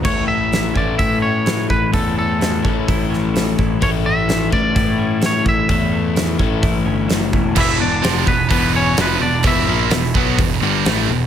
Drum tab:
CC |x---------------|----------------|----------------|----------------|
HH |----o---o---o---|o---o---o---o---|o---o---o---o---|o---o---o---o---|
SD |----o-------o---|----o-----o-o---|----o-------o---|----o-------o---|
BD |o-----o-o-----o-|o-----o-o-----o-|o-----o-o-----o-|o-----o-o-----o-|

CC |x---------------|----------------|
HH |----o---o---o---|o---o---o---o---|
SD |----o-------o---|----oo------o---|
BD |o-----o-o-------|o-----o-o-------|